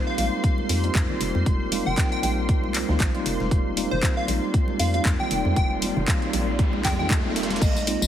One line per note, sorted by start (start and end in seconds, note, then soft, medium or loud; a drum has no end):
0.00 0.15 G3 loud
0.00 0.15 A#3 medium
0.00 0.15 C4 medium
0.00 0.15 D#4 medium
0.00 7.58 D#4 medium
0.00 0.16 F4 loud
0.00 7.58 G4 medium
0.00 7.58 A#4 medium
0.00 3.22 C5 medium
0.00 7.63 C5 medium
0.00 7.63 C6 medium
0.07 0.16 F5 medium
0.17 0.29 A#1 loud
0.17 0.80 G3 medium
0.17 0.80 A#3 medium
0.17 0.80 C4 medium
0.17 0.81 D#4 medium
0.17 0.81 F4 medium
0.17 0.33 F5 medium
0.17 closed hi-hat medium
0.17 open hi-hat medium
0.17 high conga medium
0.44 kick loud
0.44 closed hi-hat medium
0.58 high conga medium
0.69 0.90 F2 medium
0.69 open hi-hat medium
0.69 open hi-hat loud
0.83 1.05 G3 medium
0.83 1.05 A#3 medium
0.83 1.05 C4 medium
0.83 1.05 D#4 medium
0.83 1.05 F4 medium
0.83 closed hi-hat soft
0.95 1.06 F2 medium
0.95 kick loud
0.95 snare loud
0.95 clap loud
0.95 closed hi-hat medium
0.95 high conga medium
1.08 1.69 G3 medium
1.08 1.69 A#3 medium
1.08 1.69 C4 medium
1.08 1.69 D#4 medium
1.08 1.70 F4 medium
1.08 low conga medium
1.21 1.32 F1 loud
1.21 closed hi-hat medium
1.21 open hi-hat medium
1.35 1.44 F2 medium
1.35 high conga medium
1.46 1.81 F1 loud
1.46 kick loud
1.46 closed hi-hat medium
1.71 1.90 G3 medium
1.71 1.91 A#3 medium
1.71 1.91 C4 medium
1.71 1.91 D#4 medium
1.71 1.91 F4 medium
1.71 closed hi-hat medium
1.71 open hi-hat loud
1.71 high conga medium
1.86 1.95 F1 loud
1.86 2.09 G5 medium
1.86 low conga medium
1.97 2.20 G3 loud
1.97 2.20 A#3 medium
1.97 2.20 C4 medium
1.97 2.21 D#4 medium
1.97 2.21 F4 loud
1.97 kick loud
1.97 snare loud
1.97 clap loud
1.97 closed hi-hat medium
2.12 2.19 G5 medium
2.12 closed hi-hat soft
2.22 2.50 A#1 loud
2.22 2.85 G3 medium
2.22 2.85 A#3 medium
2.22 2.85 C4 medium
2.22 2.86 D#4 medium
2.22 2.86 F4 medium
2.22 2.32 G5 medium
2.22 closed hi-hat medium
2.22 open hi-hat medium
2.22 high conga medium
2.49 2.83 C2 medium
2.49 kick loud
2.49 closed hi-hat medium
2.64 high conga medium
2.74 clap medium
2.74 closed hi-hat medium
2.74 open hi-hat loud
2.88 2.98 D2 loud
2.88 3.10 G3 medium
2.88 3.10 A#3 medium
2.88 3.10 C4 medium
2.88 3.10 D#4 medium
2.88 3.10 F4 medium
2.88 snare soft
2.88 low conga medium
3.00 3.11 A#1 loud
3.00 kick loud
3.00 snare loud
3.00 clap loud
3.00 closed hi-hat medium
3.00 high conga medium
3.13 3.74 G3 medium
3.13 3.74 A#3 medium
3.13 3.74 C4 medium
3.13 3.75 D#4 medium
3.13 3.75 F4 medium
3.13 closed hi-hat soft
3.26 3.37 F1 loud
3.26 7.58 D5 medium
3.26 closed hi-hat medium
3.26 open hi-hat medium
3.40 3.49 F1 medium
3.40 snare soft
3.40 high conga medium
3.51 3.86 F1 loud
3.51 kick loud
3.51 closed hi-hat medium
3.51 riser medium
3.76 3.96 G3 medium
3.76 3.96 A#3 medium
3.76 3.96 C4 medium
3.76 3.96 D#4 medium
3.76 3.96 F4 medium
3.76 closed hi-hat medium
3.76 open hi-hat loud
3.76 high conga medium
3.91 4.00 F1 loud
3.91 4.14 C5 loud
3.91 low conga medium
4.02 4.25 G3 medium
4.02 4.25 A#3 medium
4.02 4.26 C4 medium
4.02 4.26 D#4 medium
4.02 4.26 F4 loud
4.02 kick loud
4.02 snare loud
4.02 clap loud
4.02 closed hi-hat medium
4.17 4.26 F5 medium
4.27 4.39 A#1 loud
4.27 4.90 G3 medium
4.27 4.90 A#3 medium
4.27 4.91 C4 medium
4.27 4.91 D#4 medium
4.27 4.91 F4 medium
4.27 closed hi-hat medium
4.27 open hi-hat medium
4.27 high conga medium
4.54 kick loud
4.54 closed hi-hat medium
4.68 high conga medium
4.79 5.00 F2 medium
4.79 4.89 F5 medium
4.79 open hi-hat loud
4.79 open hi-hat medium
4.94 5.15 G3 medium
4.94 5.15 A#3 medium
4.94 5.15 C4 medium
4.94 5.15 D#4 medium
4.94 5.16 F4 medium
4.94 5.01 F5 medium
4.94 closed hi-hat soft
5.05 5.16 F2 medium
5.05 kick loud
5.05 snare loud
5.05 clap loud
5.05 closed hi-hat medium
5.05 high conga medium
5.19 5.79 G3 medium
5.19 5.79 A#3 medium
5.19 5.79 C4 medium
5.19 5.80 D#4 medium
5.19 5.80 F4 medium
5.19 5.54 G5 loud
5.19 low conga medium
5.31 5.42 F1 medium
5.31 closed hi-hat medium
5.31 open hi-hat medium
5.45 5.54 F2 medium
5.45 high conga medium
5.56 5.91 F1 loud
5.56 5.71 G5 medium
5.56 kick loud
5.56 closed hi-hat medium
5.82 6.01 G3 medium
5.82 6.01 A#3 medium
5.82 6.01 C4 medium
5.82 6.01 D#4 medium
5.82 6.01 F4 loud
5.82 closed hi-hat medium
5.82 open hi-hat loud
5.82 high conga medium
5.97 6.05 F1 loud
5.97 low conga medium
6.07 6.30 G3 loud
6.07 6.31 A#3 medium
6.07 6.31 C4 medium
6.07 6.31 D#4 medium
6.07 6.31 F4 loud
6.07 kick loud
6.07 snare loud
6.07 clap loud
6.07 closed hi-hat medium
6.22 closed hi-hat soft
6.32 6.61 A#1 loud
6.32 6.95 G3 medium
6.32 6.95 A#3 medium
6.32 6.96 C4 medium
6.32 6.96 D#4 medium
6.32 6.96 F4 medium
6.32 closed hi-hat medium
6.32 open hi-hat medium
6.32 high conga medium
6.59 6.86 C2 loud
6.59 kick loud
6.59 closed hi-hat medium
6.73 high conga medium
6.85 7.26 F2 loud
6.85 6.94 G5 medium
6.85 kick medium
6.85 snare loud
6.85 clap medium
6.85 closed hi-hat medium
6.85 open hi-hat loud
6.85 low conga medium
6.99 7.20 G3 medium
6.99 7.20 A#3 medium
6.99 7.20 C4 medium
6.99 7.21 D#4 medium
6.99 7.21 F4 medium
6.99 7.06 G5 medium
6.99 low conga medium
7.10 kick loud
7.10 clap loud
7.10 closed hi-hat medium
7.10 high conga medium
7.24 7.57 F1 medium
7.24 7.60 G3 medium
7.24 7.60 A#3 medium
7.24 7.60 C4 medium
7.24 7.60 D#4 medium
7.24 7.61 F4 medium
7.36 snare medium
7.36 closed hi-hat medium
7.36 open hi-hat medium
7.43 snare medium
7.43 closed hi-hat medium
7.50 snare medium
7.50 closed hi-hat medium
7.50 high conga medium
7.56 snare medium
7.56 closed hi-hat medium
7.62 7.96 A#1 loud
7.62 8.07 D#4 medium
7.62 8.07 F4 medium
7.62 8.07 G#4 medium
7.62 8.07 C5 medium
7.62 8.07 D#5 medium
7.62 kick loud
7.62 closed hi-hat medium
7.62 tambourine medium
7.62 crash loud
7.76 tambourine soft
7.76 high conga medium
7.87 8.06 G#3 medium
7.87 8.06 A#3 medium
7.87 8.06 C4 medium
7.87 8.06 D#4 medium
7.87 8.06 F4 loud
7.87 closed hi-hat medium
7.87 open hi-hat loud
8.02 8.07 A#1 loud
8.02 tambourine medium